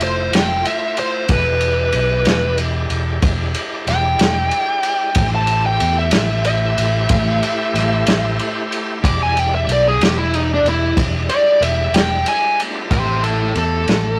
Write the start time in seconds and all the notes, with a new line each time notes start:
Already playing: A3 E4 F4 C5
0.00 F1 C5, ride
0.32 F1 G5, snare, ride
0.65 E5, ride
0.97 C5, ride
1.28 E1 G#3 E4 G4 B4 D5, kick, ride
1.61 ride
1.92 B1, ride
2.25 E1, snare, ride
2.58 ride
2.90 E1, ride
3.22 E1, kick, ride
3.54 ride
3.87 E1 G5, snare, ride
4.19 E1, snare, ride
4.51 ride
4.83 ride
5.15 A1 A3 E4 G4 C5, kick, ride
5.35 A5
5.47 ride
5.66 G5
5.80 E2, ride
5.99 E5
6.11 A1, snare, ride
6.45 E5, ride
6.78 A1, ride
7.09 A1, kick, ride
7.43 ride
7.74 A1, snare, ride
8.07 A1, snare, ride
8.39 ride
8.72 ride
9.01 E1 G3 G#3 E4 D5 D6, kick, ride
9.23 G#5
9.37 G5, ride
9.55 E5
9.67 B1, ride
9.72 D5
9.88 G#4
9.99 E1, snare, ride
10.04 G4
10.18 E4
10.34 D#4, ride
10.54 D4
10.63 E1, ride
10.69 E4
10.97 E1, kick, ride
11.29 D5, ride
11.61 E1 E5, ride
11.92 E1 G5, snare, ride
12.26 G#5, ride
12.60 A3 B3, ride
12.65 C4 D4
12.70 E4 F4
12.75 G4 A4
12.81 B4 C5
12.86 A3 G4 C5 D5
12.90 A1 E4 G4 C5, kick, ride
13.23 E4 A4, ride
13.55 E2 A4, ride
13.87 A1, snare, ride